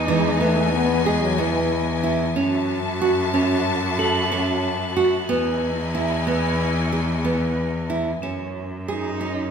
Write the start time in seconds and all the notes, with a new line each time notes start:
Already playing: E2 E3 D#4 D#5 G#5 D#7
0.08 E3 G#3
0.40 A3 B3
0.73 B3
1.05 G#3 G#4
1.22 F#3
1.38 E3 B3
2.03 E4
2.36 F#2 C#4 F#4 E5 A5
3.01 F#4
3.33 C#4
3.99 A4 F#7
4.32 C#4
4.96 F#4
5.29 E2 B3 E4 D#5 G#5
5.95 E4
6.27 B3
6.92 G#4
7.24 B3
7.90 E4
8.22 F#2 C#4 E7
8.88 D#4 G#4
9.21 C#4